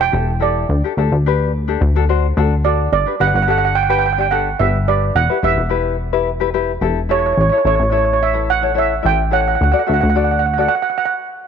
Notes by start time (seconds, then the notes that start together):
0.01 G5
0.12 E1 E4 G4 A4
0.40 E4 G4 A4 D5
0.69 D2
0.84 D4 G4 A4
0.97 D2 D4 G4 A4
1.12 D2
1.26 D4 G4 B4
1.68 D4 G4 A4
1.81 D2
1.96 D4 F#4 A4
2.09 D4 F#4 C5
2.37 D2 D4 F#4 A4
2.64 D4 F#4 A4 D5
2.92 G1 D5
3.06 D4 G4 B4
3.20 G1 D4 G4 B4 F#5
3.28 F#5
3.34 G1 F#5
3.42 F#5
3.47 D4 G4 A4 F#5
3.58 F#5
3.65 F#5
3.75 G5
3.83 G5
3.89 D4 G4 B4 G5
3.99 G5
4.06 G5
4.13 G5
4.18 D4 G4 D5 G5
4.31 D4 G4 A4 F#5
4.59 G1 D4 G4 B4 E5
4.88 D4 G4 B4 D5
5.15 E1 F#5
5.30 E4 G4 B4
5.43 E1 E4 G4 B4 E5
5.57 E1
5.69 E4 G4 B4
6.13 E4 G4 B4
6.40 E4 G4 B4
6.54 E4 G4 B4
6.81 E1 E4 G4 A4
7.09 E4 G4 A4 C#5
7.19 C#5
7.26 C#5
7.33 C#5
7.37 A1 C#5
7.50 E4 A4 C#5
7.58 C#5
7.65 A1 E4 A4 C#5
7.75 C#5
7.79 A1 C#5
7.90 E4 A4 C#5
7.97 C#5
8.05 C#5
8.13 C#5
8.23 E5
8.33 E4 A4 B4
8.50 F#5
8.62 E4 A4 C#5
8.74 E4 A4 C#5
8.78 E5
9.02 A1 E4 A4 E5 G5
9.31 E4 A4 C#5 F#5
9.41 F#5
9.48 F#5
9.55 F#5
9.61 D2 F#5
9.72 F#4 A4 D5 F#5
9.79 F#5
9.87 D2 F#4 A4 E5 F#5
9.94 F#5
10.01 D2 F#5
10.10 F#5
10.15 F#4 A4 D5 F#5
10.24 F#5
10.31 F#5
10.39 F#5
10.46 F#5
10.54 F#4 F#5
10.58 A4 D5 F#5
10.68 F#5
10.75 F#5
10.82 F#5
10.90 F#5
10.98 F#5
11.05 F#5